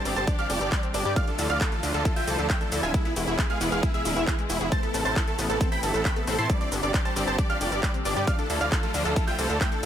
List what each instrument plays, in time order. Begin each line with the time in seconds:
Already playing: string section C3 D3 G3 D4 G4, downlifter
0.05 analog synth bass G1, synth pluck C4, supersaw synth D5, grand piano D6, open hi-hat, shaker
0.16 analog synth bass G1, supersaw synth C5 A5, grand piano A6, closed hi-hat, shaker
0.27 synth pluck D4, supersaw synth D5, grand piano D6, kick, closed hi-hat, shaker
0.39 synth pluck G4, supersaw synth D5 F5, grand piano F6, closed hi-hat, shaker
0.50 analog synth bass F1, supersaw synth D5, grand piano D6, open hi-hat, shaker
0.61 analog synth bass G1, supersaw synth D5, grand piano D6, closed hi-hat, shaker
0.72 synth pluck G3, supersaw synth D5, kick, clap, closed hi-hat, shaker
0.83 synth pluck C4, closed hi-hat, shaker
0.94 analog synth bass G1, synth pluck D4, supersaw synth D5, grand piano D6, open hi-hat, shaker
1.05 analog synth bass G2, synth pluck G4, supersaw synth D5, grand piano D6, closed hi-hat, shaker
1.16 string section D3 F3 A3 E4 F4, synth pluck A3, supersaw synth D5 F5, grand piano F6, kick, closed hi-hat, shaker
1.27 synth pluck D4, supersaw synth A4, grand piano A5, closed hi-hat, shaker
1.39 analog synth bass D2, synth pluck E4, supersaw synth A4, grand piano A5, open hi-hat, shaker
1.50 analog synth bass D2, supersaw synth D5 F5, grand piano F6, closed hi-hat, shaker
1.61 synth pluck F4, supersaw synth A4, grand piano A5, kick, clap, closed hi-hat, shaker
1.72 synth pluck A3, supersaw synth A4, grand piano A5, closed hi-hat, shaker
1.83 analog synth bass D2, synth pluck D4, open hi-hat, shaker
1.94 analog synth bass D2, supersaw synth A4, grand piano A5, closed hi-hat, shaker
2.05 synth pluck E4, supersaw synth A4, kick, closed hi-hat, shaker
2.16 synth pluck F4, supersaw synth E5 G5, grand piano G6, open hi-hat, shaker
2.27 analog synth bass C2, supersaw synth A4, grand piano A5, open hi-hat, shaker
2.39 analog synth bass D2, supersaw synth A4, grand piano A5, shaker
2.50 synth pluck A3, supersaw synth E5 G5, grand piano G6, kick, clap, closed hi-hat, shaker
2.61 synth pluck D4, supersaw synth A4, grand piano A5, closed hi-hat, shaker
2.72 analog synth bass D2, synth pluck E4, supersaw synth A4, grand piano A5, open hi-hat, shaker
2.83 analog synth bass D1, synth pluck F4, supersaw synth E5 G#5, grand piano G#6, shaker
2.94 string section B2 E3 G#3 G#4, synth pluck G#3, supersaw synth E4, grand piano E5, kick, closed hi-hat, shaker
3.05 synth pluck B3, supersaw synth E4, grand piano E5, closed hi-hat, shaker
3.16 analog synth bass E1, synth pluck E4, open hi-hat, shaker
3.27 analog synth bass E1, supersaw synth E4, grand piano E5, closed hi-hat, shaker
3.39 supersaw synth E4, synth pluck G#4, kick, clap, closed hi-hat, shaker
3.50 synth pluck G#3, supersaw synth G#4 F5, grand piano F6, closed hi-hat, shaker
3.61 analog synth bass E1, synth pluck B3, supersaw synth E4, grand piano E5, open hi-hat, shaker
3.72 analog synth bass E1, supersaw synth G#4 F5, grand piano F6, closed hi-hat, shaker
3.83 supersaw synth E4, synth pluck E4, grand piano E5, kick, closed hi-hat, shaker
3.94 supersaw synth G#4 E5, synth pluck G#4, grand piano E6, closed hi-hat, shaker
4.05 analog synth bass D1, supersaw synth E4, grand piano E5, open hi-hat, shaker
4.16 analog synth bass E1, supersaw synth E4, grand piano E5, synth pluck E5, closed hi-hat, shaker
4.27 supersaw synth E4, synth pluck G#4, kick, clap, closed hi-hat, shaker
4.39 synth pluck G#3, closed hi-hat, shaker
4.49 analog synth bass E1, supersaw synth E4, synth pluck G#4, grand piano E5, open hi-hat, shaker
4.61 analog synth bass E1, supersaw synth E4, synth pluck G#4, closed hi-hat, shaker
4.72 string section C3 E3 A3 B3, synth pluck A3, supersaw synth C5 A5, grand piano A6, kick, closed hi-hat, shaker
4.83 synth pluck B3, supersaw synth A4, grand piano A5, closed hi-hat, shaker
4.94 analog synth bass A1, synth pluck C4, supersaw synth A4, grand piano A5, open hi-hat, shaker
5.05 analog synth bass A1, supersaw synth C5 A5, grand piano A6, closed hi-hat, shaker
5.16 synth pluck E4, supersaw synth A4, grand piano A5, kick, clap, closed hi-hat, shaker
5.27 synth pluck A3, supersaw synth A4, grand piano A5, closed hi-hat, shaker
5.39 analog synth bass A1, synth pluck B3, open hi-hat, shaker
5.49 analog synth bass A1, supersaw synth A4, grand piano A5, closed hi-hat, shaker
5.61 synth pluck C4, supersaw synth A4, grand piano A5, kick, closed hi-hat, shaker
5.72 synth pluck E4, supersaw synth G5 B5, grand piano B6, open hi-hat, shaker
5.83 analog synth bass G1, supersaw synth A4, grand piano A5, open hi-hat, shaker
5.94 analog synth bass A1, supersaw synth A4, grand piano A5, closed hi-hat, shaker
6.05 synth pluck A3, supersaw synth G5 B5, grand piano B6, kick, clap, closed hi-hat, shaker
6.16 synth pluck B3, supersaw synth A4, grand piano A5, closed hi-hat, shaker
6.27 analog synth bass A1, synth pluck C4, supersaw synth A4, grand piano A5, open hi-hat, shaker
6.38 analog synth bass A2, synth pluck E4, supersaw synth A5 C6, grand piano C7, closed hi-hat, shaker
6.50 string section D3 G3 D4 G4, synth pluck G3, supersaw synth D5, grand piano D6, kick, closed hi-hat, shaker
6.61 synth pluck C4, supersaw synth D5, grand piano D6, closed hi-hat, shaker
6.72 analog synth bass G1, synth pluck D4, open hi-hat, shaker
6.83 analog synth bass G1, supersaw synth D5, grand piano D6, closed hi-hat, shaker
6.94 synth pluck G4, supersaw synth D5, kick, clap, closed hi-hat, shaker
7.05 synth pluck G3, supersaw synth C5 A5, grand piano A6, closed hi-hat, shaker
7.16 analog synth bass G1, synth pluck C4, supersaw synth D5, grand piano D6, open hi-hat, shaker
7.27 analog synth bass G1, supersaw synth C5 A5, grand piano A6, closed hi-hat, shaker
7.38 synth pluck D4, supersaw synth D5, grand piano D6, kick, closed hi-hat, shaker
7.49 synth pluck G4, supersaw synth D5 F5, grand piano F6, closed hi-hat, shaker
7.60 analog synth bass F1, supersaw synth D5, grand piano D6, open hi-hat, shaker
7.72 analog synth bass G1, supersaw synth D5, grand piano D6, closed hi-hat, shaker
7.83 synth pluck G3, supersaw synth D5, kick, clap, closed hi-hat, shaker
7.94 synth pluck C4, closed hi-hat, shaker
8.05 analog synth bass G1, synth pluck D4, supersaw synth D5, grand piano D6, open hi-hat, shaker
8.16 analog synth bass G2, synth pluck G4, supersaw synth D5, grand piano D6, closed hi-hat, shaker
8.27 string section F3 A3 E4 F4, synth pluck A3, supersaw synth D5 F5, grand piano F6, kick, closed hi-hat, shaker
8.38 synth pluck D4, supersaw synth A4, grand piano A5, closed hi-hat, shaker
8.50 analog synth bass D2, synth pluck E4, supersaw synth A4, grand piano A5, open hi-hat, shaker
8.61 analog synth bass D2, supersaw synth D5 F5, grand piano F6, closed hi-hat, shaker
8.72 synth pluck F4, supersaw synth A4, grand piano A5, kick, clap, closed hi-hat, shaker
8.83 synth pluck A3, supersaw synth A4, grand piano A5, closed hi-hat, shaker
8.94 analog synth bass D2, synth pluck D4, open hi-hat, shaker
9.05 analog synth bass D2, supersaw synth A4, grand piano A5, closed hi-hat, shaker
9.16 synth pluck E4, supersaw synth A4, kick, closed hi-hat, shaker
9.27 synth pluck F4, supersaw synth E5 G5, grand piano G6, open hi-hat, shaker
9.39 analog synth bass C2, supersaw synth A4, grand piano A5, open hi-hat, shaker
9.50 analog synth bass D2, supersaw synth A4, grand piano A5, closed hi-hat, shaker
9.61 synth pluck A3, supersaw synth E5 G5, grand piano G6, kick, clap, closed hi-hat, shaker
9.72 synth pluck D4, supersaw synth A4, grand piano A5, closed hi-hat, shaker